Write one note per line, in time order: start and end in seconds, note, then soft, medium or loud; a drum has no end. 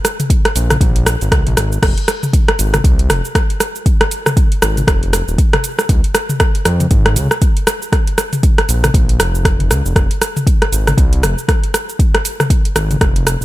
0.05 cross-stick medium
0.05 open hi-hat medium
0.05 cabasa medium
0.20 closed hi-hat soft
0.20 mid tom medium
0.20 cabasa medium
0.30 kick loud
0.30 closed hi-hat medium
0.30 cabasa soft
0.45 cross-stick loud
0.45 closed hi-hat soft
0.56 0.76 A#1 medium
0.56 open hi-hat medium
0.56 cabasa medium
0.70 cross-stick medium
0.70 closed hi-hat soft
0.70 mid tom medium
0.70 cabasa soft
0.81 1.16 A#1 loud
0.81 kick loud
0.81 closed hi-hat medium
0.81 cabasa soft
0.96 closed hi-hat soft
1.06 cross-stick loud
1.06 open hi-hat loud
1.06 cabasa medium
1.21 1.29 G#1 medium
1.21 closed hi-hat soft
1.21 cabasa soft
1.32 1.43 C#2 loud
1.32 kick loud
1.32 cross-stick loud
1.32 closed hi-hat medium
1.32 cabasa soft
1.47 1.55 A#1 loud
1.47 closed hi-hat soft
1.47 mid tom medium
1.57 1.78 G#1 medium
1.57 cross-stick medium
1.57 open hi-hat medium
1.57 cabasa medium
1.72 cabasa soft
1.82 1.94 F1 loud
1.82 kick loud
1.82 cross-stick loud
1.82 closed hi-hat medium
1.82 crash medium
1.82 cabasa soft
1.98 closed hi-hat soft
2.08 cross-stick medium
2.08 open hi-hat medium
2.08 cabasa medium
2.23 mid tom medium
2.23 cabasa medium
2.33 kick loud
2.33 closed hi-hat medium
2.33 cabasa soft
2.48 cross-stick loud
2.48 closed hi-hat soft
2.59 2.80 G#1 medium
2.59 open hi-hat medium
2.59 cabasa medium
2.74 cross-stick medium
2.74 closed hi-hat soft
2.74 mid tom medium
2.74 cabasa medium
2.84 3.11 C2 loud
2.84 kick loud
2.84 closed hi-hat medium
2.84 cabasa soft
2.99 closed hi-hat soft
3.10 3.21 F1 loud
3.10 cross-stick loud
3.10 open hi-hat loud
3.10 mid tom medium
3.10 cabasa loud
3.25 cabasa medium
3.35 kick loud
3.35 cross-stick loud
3.35 closed hi-hat medium
3.35 cabasa soft
3.50 closed hi-hat soft
3.60 cross-stick medium
3.60 open hi-hat medium
3.60 cabasa medium
3.76 cabasa medium
3.86 kick loud
3.86 closed hi-hat medium
3.86 cabasa soft
4.01 cross-stick loud
4.01 closed hi-hat soft
4.11 open hi-hat medium
4.11 cabasa medium
4.26 cross-stick medium
4.26 mid tom medium
4.26 cabasa medium
4.37 kick loud
4.37 closed hi-hat medium
4.37 cabasa soft
4.52 closed hi-hat soft
4.62 4.83 G#1 medium
4.62 cross-stick loud
4.62 open hi-hat medium
4.62 cabasa loud
4.77 closed hi-hat soft
4.77 mid tom medium
4.77 cabasa medium
4.88 5.23 F1 loud
4.88 kick loud
4.88 cross-stick loud
4.88 closed hi-hat medium
4.88 cabasa soft
5.03 closed hi-hat soft
5.13 cross-stick medium
5.13 open hi-hat loud
5.13 cabasa loud
5.28 5.36 D#1 medium
5.28 cabasa medium
5.38 kick loud
5.38 closed hi-hat medium
5.38 cabasa soft
5.53 cross-stick loud
5.53 closed hi-hat soft
5.53 mid tom medium
5.64 open hi-hat medium
5.64 cabasa medium
5.79 cross-stick medium
5.79 cabasa medium
5.89 6.01 C#2 loud
5.89 kick loud
5.89 closed hi-hat medium
5.89 cabasa soft
6.04 closed hi-hat soft
6.15 cross-stick loud
6.15 open hi-hat medium
6.15 cabasa loud
6.29 mid tom medium
6.29 cabasa medium
6.40 kick loud
6.40 cross-stick loud
6.40 closed hi-hat medium
6.40 cabasa soft
6.55 closed hi-hat soft
6.65 6.86 F2 medium
6.65 cross-stick medium
6.65 open hi-hat medium
6.65 cabasa medium
6.80 closed hi-hat soft
6.80 mid tom medium
6.80 cabasa medium
6.91 7.18 G#1 loud
6.91 kick loud
6.91 closed hi-hat medium
6.91 cabasa soft
7.06 cross-stick medium
7.06 closed hi-hat soft
7.16 7.28 C#2 loud
7.16 open hi-hat medium
7.16 mid tom medium
7.16 cabasa loud
7.31 cross-stick medium
7.31 cabasa medium
7.42 kick loud
7.42 closed hi-hat medium
7.42 cabasa soft
7.57 closed hi-hat soft
7.67 cross-stick loud
7.67 open hi-hat medium
7.67 cabasa loud
7.82 cabasa medium
7.92 kick loud
7.92 cross-stick medium
7.92 closed hi-hat medium
7.92 cabasa soft
8.07 closed hi-hat soft
8.18 cross-stick medium
8.18 open hi-hat medium
8.18 cabasa medium
8.33 closed hi-hat soft
8.33 mid tom medium
8.33 cabasa medium
8.43 kick loud
8.43 closed hi-hat medium
8.43 cabasa soft
8.58 cross-stick medium
8.58 closed hi-hat soft
8.69 8.90 A#1 medium
8.69 open hi-hat medium
8.69 cabasa loud
8.84 cross-stick medium
8.84 closed hi-hat soft
8.84 mid tom medium
8.84 cabasa medium
8.94 9.19 A#1 loud
8.94 kick loud
8.94 closed hi-hat medium
8.94 cabasa soft
9.09 closed hi-hat soft
9.20 9.72 F1 medium
9.20 cross-stick medium
9.20 open hi-hat medium
9.20 cabasa loud
9.35 cabasa medium
9.45 kick loud
9.45 cross-stick medium
9.45 closed hi-hat medium
9.45 cabasa soft
9.60 closed hi-hat soft
9.60 mid tom medium
9.70 9.82 C#2 loud
9.70 cross-stick medium
9.70 open hi-hat medium
9.70 cabasa loud
9.85 9.94 F1 medium
9.85 cabasa medium
9.96 10.08 F1 loud
9.96 kick loud
9.96 cross-stick medium
9.96 closed hi-hat medium
9.96 cabasa soft
10.11 closed hi-hat medium
10.22 cross-stick medium
10.22 open hi-hat medium
10.22 cabasa loud
10.37 mid tom loud
10.37 cabasa medium
10.47 kick loud
10.47 closed hi-hat medium
10.47 cabasa soft
10.62 cross-stick medium
10.62 closed hi-hat soft
10.72 10.93 G#1 medium
10.72 open hi-hat medium
10.72 cabasa medium
10.87 cross-stick medium
10.87 closed hi-hat soft
10.87 mid tom loud
10.87 cabasa medium
10.98 11.24 C2 loud
10.98 kick loud
10.98 closed hi-hat medium
10.98 cabasa soft
11.13 closed hi-hat soft
11.23 11.35 F1 loud
11.23 cross-stick medium
11.23 open hi-hat medium
11.23 mid tom medium
11.23 cabasa loud
11.38 cabasa medium
11.48 kick loud
11.48 cross-stick medium
11.48 closed hi-hat medium
11.48 cabasa soft
11.64 closed hi-hat soft
11.74 cross-stick medium
11.74 open hi-hat medium
11.74 cabasa medium
11.89 cabasa medium
11.99 kick loud
11.99 closed hi-hat medium
11.99 cabasa soft
12.15 cross-stick medium
12.15 closed hi-hat soft
12.25 open hi-hat medium
12.25 cabasa medium
12.40 cross-stick medium
12.40 mid tom loud
12.40 cabasa medium
12.50 kick loud
12.50 closed hi-hat medium
12.50 cabasa soft
12.65 closed hi-hat soft
12.76 12.96 G#1 medium
12.76 cross-stick medium
12.76 open hi-hat medium
12.76 cabasa medium
12.91 closed hi-hat soft
12.91 mid tom loud
12.91 cabasa medium
13.01 13.36 F1 loud
13.01 kick loud
13.01 cross-stick medium
13.01 closed hi-hat medium
13.01 cabasa soft
13.16 closed hi-hat soft
13.27 cross-stick medium
13.27 open hi-hat loud
13.27 cabasa medium
13.41 13.45 D#1 medium
13.41 cabasa soft